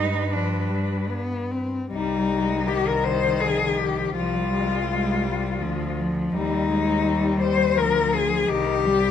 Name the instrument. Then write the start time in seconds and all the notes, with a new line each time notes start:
cello
Already playing: G2 G3 D#4 B4
0.30 F3 D4
0.70 G3
1.11 B3
1.51 C4
1.92 C2 G3 D#4
2.32 G#3
2.67 D#3 G3 G4
2.88 A#4
3.04 C5
3.41 F3 G#4
3.78 G4
4.15 C2 F3 G3 F4
4.52 G3 G#3
4.88 G3 G#3
5.24 G3
5.60 D2 F3
5.99 F3
6.34 D#2 G3 D#4
6.69 G3 G#3
7.06 G3
7.40 C5
7.77 D2 F3 A#4
8.13 G#4
8.49 C2 D#3 G3 G4
8.85 G3